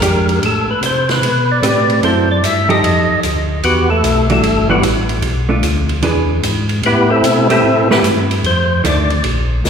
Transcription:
0.00 0.40 F2 medium
0.00 0.42 G#3 soft
0.00 0.42 D4 medium
0.00 0.42 G4 medium
0.00 0.40 A#4 medium
0.00 hi-hat pedal medium
0.00 ride medium
0.29 ride soft
0.42 0.66 A2 medium
0.42 0.70 A4 medium
0.42 ride medium
0.68 0.75 A2 soft
0.68 0.83 B4 medium
0.81 1.20 C3 medium
0.81 hi-hat pedal medium
0.81 ride medium
0.86 1.10 C5 medium
1.09 1.60 B4 loud
1.09 snare medium
1.09 ride soft
1.22 1.61 B2 medium
1.22 ride medium
1.51 2.00 D5 loud
1.62 2.01 A2 medium
1.62 2.02 A3 soft
1.62 2.02 C4 medium
1.62 2.03 G4 medium
1.62 2.03 B4 medium
1.62 hi-hat pedal medium
1.62 ride medium
1.90 ride soft
2.03 2.42 F#2 medium
2.03 2.26 F#3 soft
2.03 2.27 C4 medium
2.03 2.27 E4 medium
2.03 2.27 A4 medium
2.03 2.29 C5 medium
2.03 ride medium
2.31 2.44 D5 medium
2.42 2.82 G2 medium
2.42 2.69 E5 loud
2.42 hi-hat pedal medium
2.42 ride medium
2.69 3.20 F3 medium
2.69 3.20 D#4 medium
2.69 3.20 G4 medium
2.69 3.21 A4 loud
2.69 3.20 D#5 loud
2.69 ride soft
2.83 3.07 F2 medium
2.83 ride medium
3.10 3.17 F2 soft
3.23 3.62 D2 medium
3.23 hi-hat pedal medium
3.23 ride medium
3.63 4.02 E2 medium
3.63 3.89 B3 medium
3.63 3.89 F#4 medium
3.63 3.90 G4 medium
3.63 3.90 B4 medium
3.63 ride medium
3.90 4.28 A3 medium
3.90 4.27 A4 medium
4.03 4.42 B1 medium
4.03 hi-hat pedal soft
4.03 ride medium
4.30 4.42 E3 medium
4.30 4.43 G3 medium
4.30 4.68 A3 medium
4.30 4.42 D4 medium
4.30 4.43 F#4 medium
4.30 4.68 A4 loud
4.30 ride medium
4.43 4.82 G1 medium
4.43 ride medium
4.69 4.82 E3 medium
4.69 4.82 G3 medium
4.69 4.84 B3 medium
4.69 4.82 D4 medium
4.69 4.82 F#4 medium
4.69 4.84 F#4 medium
4.69 4.84 G4 medium
4.69 4.83 B4 medium
4.82 5.21 A1 medium
4.82 hi-hat pedal medium
4.82 ride medium
5.09 ride medium
5.22 5.62 B1 medium
5.22 ride medium
5.49 5.62 A3 medium
5.49 5.62 D4 medium
5.49 5.62 F4 medium
5.62 6.02 D2 loud
5.62 hi-hat pedal medium
5.62 ride medium
5.89 ride soft
6.01 6.41 E2 medium
6.01 6.27 E3 medium
6.01 6.27 D4 medium
6.01 6.27 G#4 medium
6.01 6.27 B4 medium
6.01 ride medium
6.42 6.82 G#2 medium
6.42 hi-hat pedal medium
6.42 ride medium
6.69 ride soft
6.82 7.22 A2 medium
6.82 7.10 B4 medium
6.82 ride medium
6.86 7.11 B3 medium
6.86 7.10 E4 medium
6.86 7.11 G4 medium
7.10 7.48 A3 medium
7.10 7.48 C4 medium
7.10 7.48 E4 medium
7.10 7.48 A4 loud
7.23 7.62 B2 medium
7.23 hi-hat pedal medium
7.23 ride medium
7.50 7.62 A3 medium
7.50 7.88 A3 medium
7.50 7.62 C4 medium
7.50 7.88 C4 medium
7.50 7.88 E4 medium
7.50 7.63 G4 medium
7.50 7.88 A4 loud
7.50 7.63 B4 medium
7.50 ride medium
7.63 8.02 A2 medium
7.91 8.03 A3 medium
7.91 8.00 B3 medium
7.91 8.03 C4 medium
7.91 8.00 E4 medium
7.91 8.03 G4 medium
7.91 8.00 G4 medium
7.91 7.99 B4 loud
7.91 8.03 B4 medium
7.91 snare medium
8.04 8.43 G2 medium
8.04 hi-hat pedal medium
8.04 ride medium
8.31 ride medium
8.43 8.83 F2 medium
8.43 8.83 C5 loud
8.43 ride medium
8.84 9.23 D2 loud
8.84 9.08 D#3 medium
8.84 9.08 A3 medium
8.84 9.08 D4 medium
8.84 9.23 D5 medium
8.84 hi-hat pedal medium
8.84 ride medium
9.10 ride soft
9.24 9.63 A#1 medium
9.24 ride medium
9.64 9.70 C#2 medium
9.64 snare medium
9.64 hi-hat pedal medium

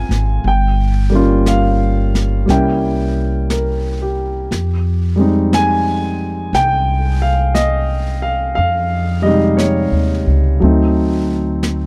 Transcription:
0.00 0.44 G#3 soft
0.00 0.45 A#3 soft
0.00 0.45 C4 soft
0.00 0.45 D#4 soft
0.00 0.46 F4 soft
0.00 0.46 F5 medium
0.00 0.49 G#5 medium
0.09 0.42 G#1 medium
0.09 snare soft
0.44 2.44 G1 medium
0.44 1.44 G5 medium
0.44 brush sweep soft
1.10 2.44 G3 medium
1.10 2.46 A#3 soft
1.10 2.48 C#4 soft
1.15 2.50 F4 medium
1.46 2.45 F5 medium
1.46 brush sweep soft
1.46 snare soft
1.46 hi-hat pedal medium
2.15 snare soft
2.46 4.47 C2 medium
2.46 4.50 G3 medium
2.46 4.51 A#3 soft
2.46 4.51 C#4 medium
2.46 brush sweep soft
2.46 snare soft
2.50 4.52 E4 medium
2.50 4.13 G5 medium
3.50 4.30 A#4 soft
3.50 brush sweep soft
3.50 snare soft
3.50 hi-hat pedal soft
4.02 4.73 G4 soft
4.51 6.49 F2 medium
4.51 brush sweep soft
4.51 snare soft
5.16 8.56 G3 soft
5.16 8.57 G#3 soft
5.16 8.57 C4 soft
5.21 8.58 D#4 medium
5.53 6.50 G#5 medium
5.53 brush sweep soft
5.53 snare soft
5.53 hi-hat pedal soft
6.53 8.52 C2 medium
6.53 7.18 G5 medium
6.53 brush sweep soft
6.53 snare soft
7.22 7.56 F5 medium
7.55 8.18 D#5 medium
7.55 brush sweep soft
7.55 snare soft
7.55 hi-hat pedal medium
8.22 8.54 F5 medium
8.55 9.89 F2 medium
8.55 9.20 F5 medium
8.55 brush sweep soft
9.22 10.60 G3 medium
9.22 10.61 G#3 soft
9.22 9.55 D#5 medium
9.26 10.62 C3 soft
9.26 10.62 D#4 medium
9.57 10.56 C#5 medium
9.57 brush sweep soft
9.57 snare soft
9.57 hi-hat pedal soft
9.92 10.23 D#2 medium
10.26 10.58 C#2 medium
10.60 11.86 D2 medium
10.60 11.86 F#3 medium
10.60 11.86 A3 soft
10.60 11.86 C4 soft
10.60 brush sweep soft
10.65 11.86 D#4 medium
11.63 brush sweep soft
11.63 snare soft
11.63 hi-hat pedal soft

